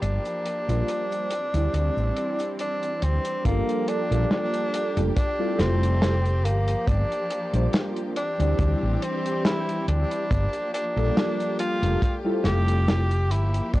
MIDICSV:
0, 0, Header, 1, 6, 480
1, 0, Start_track
1, 0, Tempo, 857143
1, 12, Time_signature, 4, 2, 24, 8
1, 7728, End_track
2, 0, Start_track
2, 0, Title_t, "Synth keys"
2, 0, Program_c, 0, 88
2, 380, Note_on_c, 0, 55, 78
2, 382, Note_on_c, 0, 58, 71
2, 385, Note_on_c, 0, 62, 67
2, 386, Note_on_c, 0, 65, 70
2, 388, Note_on_c, 0, 72, 81
2, 718, Note_off_c, 0, 55, 0
2, 718, Note_off_c, 0, 58, 0
2, 720, Note_off_c, 0, 62, 0
2, 720, Note_off_c, 0, 65, 0
2, 722, Note_off_c, 0, 72, 0
2, 855, Note_on_c, 0, 55, 80
2, 859, Note_on_c, 0, 60, 75
2, 863, Note_on_c, 0, 62, 72
2, 867, Note_on_c, 0, 64, 73
2, 871, Note_on_c, 0, 74, 90
2, 1915, Note_off_c, 0, 55, 0
2, 1917, Note_off_c, 0, 60, 0
2, 1919, Note_off_c, 0, 62, 0
2, 1921, Note_off_c, 0, 64, 0
2, 1923, Note_off_c, 0, 74, 0
2, 1926, Note_on_c, 0, 55, 92
2, 1928, Note_on_c, 0, 58, 90
2, 1930, Note_on_c, 0, 62, 89
2, 1933, Note_on_c, 0, 65, 90
2, 1934, Note_on_c, 0, 69, 104
2, 2247, Note_off_c, 0, 55, 0
2, 2248, Note_off_c, 0, 58, 0
2, 2249, Note_off_c, 0, 62, 0
2, 2250, Note_off_c, 0, 65, 0
2, 2251, Note_off_c, 0, 69, 0
2, 2296, Note_on_c, 0, 55, 88
2, 2298, Note_on_c, 0, 58, 85
2, 2299, Note_on_c, 0, 62, 81
2, 2301, Note_on_c, 0, 65, 85
2, 2304, Note_on_c, 0, 69, 100
2, 2747, Note_off_c, 0, 55, 0
2, 2748, Note_off_c, 0, 58, 0
2, 2749, Note_off_c, 0, 62, 0
2, 2750, Note_off_c, 0, 65, 0
2, 2752, Note_off_c, 0, 69, 0
2, 2776, Note_on_c, 0, 55, 83
2, 2778, Note_on_c, 0, 58, 71
2, 2781, Note_on_c, 0, 62, 71
2, 2783, Note_on_c, 0, 65, 72
2, 2784, Note_on_c, 0, 69, 85
2, 2866, Note_off_c, 0, 55, 0
2, 2867, Note_off_c, 0, 58, 0
2, 2868, Note_off_c, 0, 62, 0
2, 2869, Note_off_c, 0, 65, 0
2, 2870, Note_off_c, 0, 69, 0
2, 3015, Note_on_c, 0, 55, 99
2, 3018, Note_on_c, 0, 60, 93
2, 3020, Note_on_c, 0, 64, 93
2, 3021, Note_on_c, 0, 65, 94
2, 3024, Note_on_c, 0, 69, 104
2, 3342, Note_off_c, 0, 55, 0
2, 3343, Note_off_c, 0, 60, 0
2, 3344, Note_off_c, 0, 64, 0
2, 3345, Note_off_c, 0, 65, 0
2, 3346, Note_off_c, 0, 69, 0
2, 3364, Note_on_c, 0, 55, 78
2, 3366, Note_on_c, 0, 60, 72
2, 3368, Note_on_c, 0, 64, 70
2, 3371, Note_on_c, 0, 65, 72
2, 3373, Note_on_c, 0, 69, 83
2, 3432, Note_off_c, 0, 55, 0
2, 3433, Note_off_c, 0, 60, 0
2, 3434, Note_off_c, 0, 64, 0
2, 3436, Note_off_c, 0, 65, 0
2, 3437, Note_off_c, 0, 69, 0
2, 4216, Note_on_c, 0, 55, 82
2, 4219, Note_on_c, 0, 58, 73
2, 4220, Note_on_c, 0, 62, 75
2, 4223, Note_on_c, 0, 65, 72
2, 4225, Note_on_c, 0, 72, 90
2, 4556, Note_off_c, 0, 55, 0
2, 4557, Note_off_c, 0, 58, 0
2, 4558, Note_off_c, 0, 62, 0
2, 4559, Note_off_c, 0, 65, 0
2, 4560, Note_off_c, 0, 72, 0
2, 4692, Note_on_c, 0, 55, 87
2, 4696, Note_on_c, 0, 60, 80
2, 4701, Note_on_c, 0, 62, 76
2, 4705, Note_on_c, 0, 64, 78
2, 4709, Note_on_c, 0, 74, 97
2, 5754, Note_off_c, 0, 55, 0
2, 5756, Note_off_c, 0, 60, 0
2, 5758, Note_off_c, 0, 62, 0
2, 5760, Note_off_c, 0, 64, 0
2, 5762, Note_off_c, 0, 74, 0
2, 6134, Note_on_c, 0, 55, 93
2, 6137, Note_on_c, 0, 58, 84
2, 6139, Note_on_c, 0, 62, 81
2, 6141, Note_on_c, 0, 65, 81
2, 6143, Note_on_c, 0, 69, 101
2, 6587, Note_off_c, 0, 55, 0
2, 6588, Note_off_c, 0, 58, 0
2, 6589, Note_off_c, 0, 62, 0
2, 6590, Note_off_c, 0, 65, 0
2, 6591, Note_off_c, 0, 69, 0
2, 6616, Note_on_c, 0, 55, 81
2, 6618, Note_on_c, 0, 58, 73
2, 6621, Note_on_c, 0, 62, 71
2, 6621, Note_on_c, 0, 65, 77
2, 6624, Note_on_c, 0, 69, 89
2, 6706, Note_off_c, 0, 55, 0
2, 6707, Note_off_c, 0, 58, 0
2, 6708, Note_off_c, 0, 62, 0
2, 6709, Note_off_c, 0, 65, 0
2, 6710, Note_off_c, 0, 69, 0
2, 6855, Note_on_c, 0, 55, 101
2, 6857, Note_on_c, 0, 60, 91
2, 6859, Note_on_c, 0, 64, 88
2, 6862, Note_on_c, 0, 65, 91
2, 6864, Note_on_c, 0, 69, 108
2, 7182, Note_off_c, 0, 55, 0
2, 7183, Note_off_c, 0, 60, 0
2, 7184, Note_off_c, 0, 64, 0
2, 7185, Note_off_c, 0, 65, 0
2, 7186, Note_off_c, 0, 69, 0
2, 7206, Note_on_c, 0, 55, 81
2, 7208, Note_on_c, 0, 60, 73
2, 7210, Note_on_c, 0, 64, 73
2, 7213, Note_on_c, 0, 65, 73
2, 7215, Note_on_c, 0, 69, 87
2, 7273, Note_off_c, 0, 55, 0
2, 7274, Note_off_c, 0, 60, 0
2, 7275, Note_off_c, 0, 64, 0
2, 7277, Note_off_c, 0, 65, 0
2, 7278, Note_off_c, 0, 69, 0
2, 7728, End_track
3, 0, Start_track
3, 0, Title_t, "Tenor saxophone"
3, 0, Program_c, 1, 66
3, 8, Note_on_c, 1, 62, 102
3, 1428, Note_off_c, 1, 62, 0
3, 1458, Note_on_c, 1, 62, 107
3, 1696, Note_on_c, 1, 60, 94
3, 1704, Note_off_c, 1, 62, 0
3, 1932, Note_off_c, 1, 60, 0
3, 1935, Note_on_c, 1, 58, 107
3, 2175, Note_on_c, 1, 62, 117
3, 2184, Note_off_c, 1, 58, 0
3, 2797, Note_off_c, 1, 62, 0
3, 2892, Note_on_c, 1, 62, 108
3, 3133, Note_on_c, 1, 60, 104
3, 3141, Note_off_c, 1, 62, 0
3, 3610, Note_on_c, 1, 58, 87
3, 3619, Note_off_c, 1, 60, 0
3, 3849, Note_on_c, 1, 62, 106
3, 3858, Note_off_c, 1, 58, 0
3, 4330, Note_off_c, 1, 62, 0
3, 4574, Note_on_c, 1, 62, 99
3, 5053, Note_on_c, 1, 60, 89
3, 5062, Note_off_c, 1, 62, 0
3, 5289, Note_off_c, 1, 60, 0
3, 5292, Note_on_c, 1, 64, 103
3, 5515, Note_off_c, 1, 64, 0
3, 5533, Note_on_c, 1, 62, 97
3, 5990, Note_off_c, 1, 62, 0
3, 6014, Note_on_c, 1, 62, 103
3, 6470, Note_off_c, 1, 62, 0
3, 6494, Note_on_c, 1, 65, 107
3, 6807, Note_off_c, 1, 65, 0
3, 6974, Note_on_c, 1, 67, 119
3, 7453, Note_on_c, 1, 64, 98
3, 7461, Note_off_c, 1, 67, 0
3, 7692, Note_off_c, 1, 64, 0
3, 7695, Note_on_c, 1, 62, 111
3, 7728, Note_off_c, 1, 62, 0
3, 7728, End_track
4, 0, Start_track
4, 0, Title_t, "String section"
4, 0, Program_c, 2, 48
4, 0, Note_on_c, 2, 53, 73
4, 0, Note_on_c, 2, 58, 69
4, 0, Note_on_c, 2, 67, 73
4, 721, Note_off_c, 2, 58, 0
4, 723, Note_off_c, 2, 53, 0
4, 733, Note_on_c, 2, 52, 73
4, 734, Note_on_c, 2, 60, 67
4, 1908, Note_off_c, 2, 67, 0
4, 1920, Note_off_c, 2, 52, 0
4, 1921, Note_off_c, 2, 60, 0
4, 1930, Note_on_c, 2, 53, 76
4, 1930, Note_on_c, 2, 67, 81
4, 1931, Note_on_c, 2, 58, 68
4, 2881, Note_off_c, 2, 53, 0
4, 2882, Note_off_c, 2, 58, 0
4, 2890, Note_on_c, 2, 57, 73
4, 3604, Note_off_c, 2, 57, 0
4, 3610, Note_on_c, 2, 58, 71
4, 3611, Note_on_c, 2, 53, 81
4, 4549, Note_off_c, 2, 67, 0
4, 4561, Note_off_c, 2, 58, 0
4, 4562, Note_off_c, 2, 53, 0
4, 4570, Note_on_c, 2, 67, 87
4, 4571, Note_on_c, 2, 60, 72
4, 4572, Note_on_c, 2, 52, 80
4, 5759, Note_off_c, 2, 60, 0
4, 5759, Note_off_c, 2, 67, 0
4, 5760, Note_off_c, 2, 52, 0
4, 5770, Note_on_c, 2, 53, 76
4, 5771, Note_on_c, 2, 58, 67
4, 5771, Note_on_c, 2, 67, 83
4, 6721, Note_off_c, 2, 53, 0
4, 6721, Note_off_c, 2, 58, 0
4, 6734, Note_on_c, 2, 57, 73
4, 7446, Note_off_c, 2, 57, 0
4, 7450, Note_on_c, 2, 53, 76
4, 7451, Note_on_c, 2, 58, 71
4, 7728, Note_off_c, 2, 53, 0
4, 7728, Note_off_c, 2, 58, 0
4, 7728, Note_off_c, 2, 67, 0
4, 7728, End_track
5, 0, Start_track
5, 0, Title_t, "Fretless electric bass"
5, 0, Program_c, 3, 35
5, 12, Note_on_c, 3, 31, 90
5, 96, Note_off_c, 3, 31, 0
5, 384, Note_on_c, 3, 34, 97
5, 454, Note_off_c, 3, 34, 0
5, 862, Note_on_c, 3, 38, 89
5, 933, Note_off_c, 3, 38, 0
5, 972, Note_on_c, 3, 38, 87
5, 1056, Note_off_c, 3, 38, 0
5, 1102, Note_on_c, 3, 33, 83
5, 1173, Note_off_c, 3, 33, 0
5, 1693, Note_on_c, 3, 38, 84
5, 1777, Note_off_c, 3, 38, 0
5, 1933, Note_on_c, 3, 31, 96
5, 2016, Note_off_c, 3, 31, 0
5, 2303, Note_on_c, 3, 34, 96
5, 2373, Note_off_c, 3, 34, 0
5, 2782, Note_on_c, 3, 29, 89
5, 2853, Note_off_c, 3, 29, 0
5, 3131, Note_on_c, 3, 29, 105
5, 3611, Note_off_c, 3, 29, 0
5, 3611, Note_on_c, 3, 31, 102
5, 3774, Note_off_c, 3, 31, 0
5, 3850, Note_on_c, 3, 31, 98
5, 3935, Note_off_c, 3, 31, 0
5, 4220, Note_on_c, 3, 34, 97
5, 4292, Note_off_c, 3, 34, 0
5, 4702, Note_on_c, 3, 38, 88
5, 4773, Note_off_c, 3, 38, 0
5, 4809, Note_on_c, 3, 38, 98
5, 4894, Note_off_c, 3, 38, 0
5, 4943, Note_on_c, 3, 33, 90
5, 5013, Note_off_c, 3, 33, 0
5, 5533, Note_on_c, 3, 38, 90
5, 5616, Note_off_c, 3, 38, 0
5, 5772, Note_on_c, 3, 31, 99
5, 5856, Note_off_c, 3, 31, 0
5, 6140, Note_on_c, 3, 34, 95
5, 6212, Note_off_c, 3, 34, 0
5, 6621, Note_on_c, 3, 29, 91
5, 6693, Note_off_c, 3, 29, 0
5, 6970, Note_on_c, 3, 29, 104
5, 7452, Note_off_c, 3, 29, 0
5, 7452, Note_on_c, 3, 31, 96
5, 7614, Note_off_c, 3, 31, 0
5, 7693, Note_on_c, 3, 31, 94
5, 7728, Note_off_c, 3, 31, 0
5, 7728, End_track
6, 0, Start_track
6, 0, Title_t, "Drums"
6, 13, Note_on_c, 9, 42, 83
6, 14, Note_on_c, 9, 69, 53
6, 69, Note_off_c, 9, 42, 0
6, 70, Note_off_c, 9, 69, 0
6, 139, Note_on_c, 9, 69, 42
6, 141, Note_on_c, 9, 42, 45
6, 195, Note_off_c, 9, 69, 0
6, 197, Note_off_c, 9, 42, 0
6, 254, Note_on_c, 9, 42, 75
6, 310, Note_off_c, 9, 42, 0
6, 386, Note_on_c, 9, 69, 54
6, 387, Note_on_c, 9, 42, 56
6, 442, Note_off_c, 9, 69, 0
6, 443, Note_off_c, 9, 42, 0
6, 495, Note_on_c, 9, 42, 81
6, 496, Note_on_c, 9, 69, 52
6, 551, Note_off_c, 9, 42, 0
6, 552, Note_off_c, 9, 69, 0
6, 625, Note_on_c, 9, 69, 41
6, 629, Note_on_c, 9, 42, 48
6, 681, Note_off_c, 9, 69, 0
6, 685, Note_off_c, 9, 42, 0
6, 731, Note_on_c, 9, 42, 91
6, 787, Note_off_c, 9, 42, 0
6, 862, Note_on_c, 9, 42, 63
6, 864, Note_on_c, 9, 69, 58
6, 918, Note_off_c, 9, 42, 0
6, 920, Note_off_c, 9, 69, 0
6, 973, Note_on_c, 9, 69, 51
6, 974, Note_on_c, 9, 42, 82
6, 1029, Note_off_c, 9, 69, 0
6, 1030, Note_off_c, 9, 42, 0
6, 1106, Note_on_c, 9, 69, 43
6, 1162, Note_off_c, 9, 69, 0
6, 1213, Note_on_c, 9, 42, 73
6, 1269, Note_off_c, 9, 42, 0
6, 1337, Note_on_c, 9, 69, 63
6, 1344, Note_on_c, 9, 42, 64
6, 1393, Note_off_c, 9, 69, 0
6, 1400, Note_off_c, 9, 42, 0
6, 1451, Note_on_c, 9, 42, 78
6, 1452, Note_on_c, 9, 69, 58
6, 1507, Note_off_c, 9, 42, 0
6, 1508, Note_off_c, 9, 69, 0
6, 1584, Note_on_c, 9, 42, 52
6, 1585, Note_on_c, 9, 69, 43
6, 1640, Note_off_c, 9, 42, 0
6, 1641, Note_off_c, 9, 69, 0
6, 1692, Note_on_c, 9, 42, 84
6, 1748, Note_off_c, 9, 42, 0
6, 1819, Note_on_c, 9, 69, 59
6, 1820, Note_on_c, 9, 42, 62
6, 1875, Note_off_c, 9, 69, 0
6, 1876, Note_off_c, 9, 42, 0
6, 1933, Note_on_c, 9, 36, 121
6, 1934, Note_on_c, 9, 42, 95
6, 1989, Note_off_c, 9, 36, 0
6, 1990, Note_off_c, 9, 42, 0
6, 2066, Note_on_c, 9, 42, 49
6, 2122, Note_off_c, 9, 42, 0
6, 2172, Note_on_c, 9, 42, 88
6, 2228, Note_off_c, 9, 42, 0
6, 2307, Note_on_c, 9, 42, 68
6, 2363, Note_off_c, 9, 42, 0
6, 2413, Note_on_c, 9, 38, 112
6, 2413, Note_on_c, 9, 42, 77
6, 2469, Note_off_c, 9, 38, 0
6, 2469, Note_off_c, 9, 42, 0
6, 2541, Note_on_c, 9, 42, 52
6, 2597, Note_off_c, 9, 42, 0
6, 2653, Note_on_c, 9, 42, 103
6, 2709, Note_off_c, 9, 42, 0
6, 2783, Note_on_c, 9, 42, 73
6, 2839, Note_off_c, 9, 42, 0
6, 2893, Note_on_c, 9, 42, 97
6, 2894, Note_on_c, 9, 36, 127
6, 2949, Note_off_c, 9, 42, 0
6, 2950, Note_off_c, 9, 36, 0
6, 3129, Note_on_c, 9, 38, 64
6, 3133, Note_on_c, 9, 42, 88
6, 3185, Note_off_c, 9, 38, 0
6, 3189, Note_off_c, 9, 42, 0
6, 3266, Note_on_c, 9, 42, 66
6, 3322, Note_off_c, 9, 42, 0
6, 3370, Note_on_c, 9, 38, 120
6, 3375, Note_on_c, 9, 42, 94
6, 3426, Note_off_c, 9, 38, 0
6, 3431, Note_off_c, 9, 42, 0
6, 3503, Note_on_c, 9, 42, 50
6, 3559, Note_off_c, 9, 42, 0
6, 3613, Note_on_c, 9, 42, 94
6, 3669, Note_off_c, 9, 42, 0
6, 3739, Note_on_c, 9, 42, 74
6, 3795, Note_off_c, 9, 42, 0
6, 3850, Note_on_c, 9, 36, 118
6, 3851, Note_on_c, 9, 42, 86
6, 3906, Note_off_c, 9, 36, 0
6, 3907, Note_off_c, 9, 42, 0
6, 3986, Note_on_c, 9, 42, 54
6, 4042, Note_off_c, 9, 42, 0
6, 4091, Note_on_c, 9, 42, 95
6, 4147, Note_off_c, 9, 42, 0
6, 4220, Note_on_c, 9, 42, 65
6, 4276, Note_off_c, 9, 42, 0
6, 4329, Note_on_c, 9, 42, 86
6, 4334, Note_on_c, 9, 38, 126
6, 4385, Note_off_c, 9, 42, 0
6, 4390, Note_off_c, 9, 38, 0
6, 4460, Note_on_c, 9, 42, 50
6, 4516, Note_off_c, 9, 42, 0
6, 4571, Note_on_c, 9, 42, 88
6, 4627, Note_off_c, 9, 42, 0
6, 4703, Note_on_c, 9, 42, 67
6, 4759, Note_off_c, 9, 42, 0
6, 4808, Note_on_c, 9, 42, 90
6, 4809, Note_on_c, 9, 36, 122
6, 4864, Note_off_c, 9, 42, 0
6, 4865, Note_off_c, 9, 36, 0
6, 5052, Note_on_c, 9, 42, 84
6, 5108, Note_off_c, 9, 42, 0
6, 5184, Note_on_c, 9, 42, 62
6, 5240, Note_off_c, 9, 42, 0
6, 5291, Note_on_c, 9, 38, 118
6, 5295, Note_on_c, 9, 42, 93
6, 5347, Note_off_c, 9, 38, 0
6, 5351, Note_off_c, 9, 42, 0
6, 5425, Note_on_c, 9, 42, 51
6, 5481, Note_off_c, 9, 42, 0
6, 5534, Note_on_c, 9, 42, 82
6, 5590, Note_off_c, 9, 42, 0
6, 5663, Note_on_c, 9, 42, 62
6, 5719, Note_off_c, 9, 42, 0
6, 5773, Note_on_c, 9, 36, 123
6, 5774, Note_on_c, 9, 42, 84
6, 5829, Note_off_c, 9, 36, 0
6, 5830, Note_off_c, 9, 42, 0
6, 5898, Note_on_c, 9, 42, 57
6, 5954, Note_off_c, 9, 42, 0
6, 6016, Note_on_c, 9, 42, 92
6, 6072, Note_off_c, 9, 42, 0
6, 6145, Note_on_c, 9, 42, 71
6, 6201, Note_off_c, 9, 42, 0
6, 6256, Note_on_c, 9, 38, 117
6, 6257, Note_on_c, 9, 42, 83
6, 6312, Note_off_c, 9, 38, 0
6, 6313, Note_off_c, 9, 42, 0
6, 6385, Note_on_c, 9, 42, 50
6, 6441, Note_off_c, 9, 42, 0
6, 6491, Note_on_c, 9, 42, 97
6, 6547, Note_off_c, 9, 42, 0
6, 6624, Note_on_c, 9, 42, 72
6, 6680, Note_off_c, 9, 42, 0
6, 6732, Note_on_c, 9, 36, 116
6, 6734, Note_on_c, 9, 42, 86
6, 6788, Note_off_c, 9, 36, 0
6, 6790, Note_off_c, 9, 42, 0
6, 6966, Note_on_c, 9, 38, 68
6, 6972, Note_on_c, 9, 42, 82
6, 7022, Note_off_c, 9, 38, 0
6, 7028, Note_off_c, 9, 42, 0
6, 7102, Note_on_c, 9, 42, 65
6, 7158, Note_off_c, 9, 42, 0
6, 7214, Note_on_c, 9, 38, 115
6, 7214, Note_on_c, 9, 42, 84
6, 7270, Note_off_c, 9, 38, 0
6, 7270, Note_off_c, 9, 42, 0
6, 7342, Note_on_c, 9, 42, 56
6, 7398, Note_off_c, 9, 42, 0
6, 7454, Note_on_c, 9, 42, 86
6, 7510, Note_off_c, 9, 42, 0
6, 7584, Note_on_c, 9, 42, 65
6, 7640, Note_off_c, 9, 42, 0
6, 7692, Note_on_c, 9, 42, 82
6, 7693, Note_on_c, 9, 36, 127
6, 7728, Note_off_c, 9, 36, 0
6, 7728, Note_off_c, 9, 42, 0
6, 7728, End_track
0, 0, End_of_file